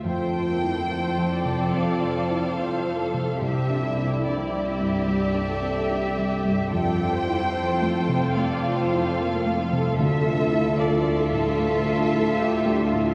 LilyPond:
<<
  \new Staff \with { instrumentName = "Violin section" } { \time 4/4 \key f \major \tempo 4 = 73 g''2 f''2 | e''4 d''8 e''2~ e''8 | g''2 f''2 | e''4 d''8 e''2~ e''8 | }
  \new Staff \with { instrumentName = "Harp" } { \time 4/4 \key f \major \tuplet 3/2 { f8 f'8 c''8 a''8 f''8 c''8 c'8 f'8 c''8 a''8 f''8 c''8 } | \tuplet 3/2 { c8 c'8 g'8 d''8 c''8 g'8 g8 c'8 g'8 d''8 c''8 g'8 } | \tuplet 3/2 { f8 f'8 c''8 a''4 c''8 c'8 f'8 c''8 a''4 c''8 } | \tuplet 3/2 { d8 d'8 a'8~ a'8 d''8 a'8 a8 d'8 a'8~ a'8 d''8 a'8 } | }
  \new Staff \with { instrumentName = "Viola section" } { \time 4/4 \key f \major c''8 bes8 c''8 d''4. c''8 a'8 | g'8 e'4. g'8 a'8 g'4 | a'8 c''4. d''8 c''8 bes8 a'8~ | a'2. g'8 f'8 | }
  \new Staff \with { instrumentName = "Violin section" } { \time 4/4 \key f \major <a' c''>1 | <g' d''>1 | <f' a'>1 | <f' a'>1 | }
  \new Staff \with { instrumentName = "Grand piano" } { \time 4/4 \key f \major \tuplet 3/2 { f,8 f'8 e'8 f'8 f8 c8 f8 f'8 e'8 f'8 f8 c8 } | \tuplet 3/2 { c,8 d'8 c'8 d'8 g8 g,8 g8 d'8 c'8 d'8 g8 g,8 } | \tuplet 3/2 { f,8 f'8 e'8 f'8 a8 c8 a8 f'8 e'8 f'8 a8 c8 } | \tuplet 3/2 { d,8 f'8 e'8 f'8 a8 a,8 a8 f'8 e'8 f'8 a8 a,8 } | }
  \new Staff \with { instrumentName = "Cello section" } { \clef bass \time 4/4 \key f \major f,1 | c,1 | f,1 | d,1 | }
>>